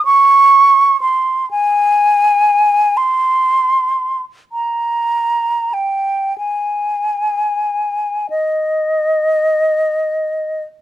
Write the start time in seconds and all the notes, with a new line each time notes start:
0.05 C#6
1.02 C6
1.51 G#5
2.97 C6
4.52 A#5
5.74 G5
6.38 G#5
8.30 D#5